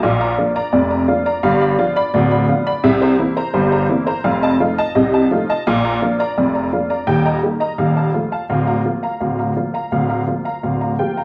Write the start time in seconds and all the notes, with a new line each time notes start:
0.03 A#1 A#2 F5
0.20 D5 A#5
0.38 F3 A#3 D4 F4
0.56 D5 A#5
0.73 F1 F2 D5
0.90 D5 A#5
1.08 F3 A#3 D4 F4
1.26 D5 A#5
1.43 G1 G2 F5
1.61 D5 B5
1.79 F3 B3 D4 F4
1.96 D5 B5
2.14 D1 D2 D5
2.31 D5 B5
2.49 F3 B3 D4 F4
2.67 D5 B5
2.84 C2 C3 E5
3.02 C5 A#5
3.19 E3 A#3 C4 E4
3.37 C5 A#5
3.54 G1 G2 C5
3.72 C5 A#5
3.89 E3 A#3 C4 E4
4.07 C5 A#5
4.24 F1 F2 F5
4.43 D#5 A5
4.60 F3 A3 D#4 F4
4.78 D#5 A5
4.95 C2 C3 D#5
5.13 D#5 A5
5.31 F3 A3 D#4 F4
5.50 D#5 A5
5.67 A#1 A#2 F5
5.84 D5 A#5
6.02 F3 A#3 D4 F4
6.20 D5 A#5
6.38 F1 F2 D5
6.55 D5 A#5
6.73 F3 A#3 D4 F4
6.90 D5 A#5
7.07 D#1 D#2 G5
7.25 D#5 A#5
7.43 G3 A#3 D#4 G4
7.60 D#5 A#5
7.78 D#1 D#2 F5
7.96 F5 A5
8.14 F3 A3 F4
8.32 F5 A5
8.50 D1 D2 F5
8.67 F5 A#5
8.85 F3 A#3 F4
9.03 F5 A#5
9.20 D1 D2 F5
9.39 F5 A#5
9.56 F3 A#3 F4
9.74 F5 A#5
9.92 D1 D2 F5
10.09 F5 A#5
10.27 F3 A#3 F4
10.45 F5 A#5
10.63 D1 D2 F5
10.81 F5 A#5
10.99 F3 A#3 F4 G4 G5
11.17 F5 A#5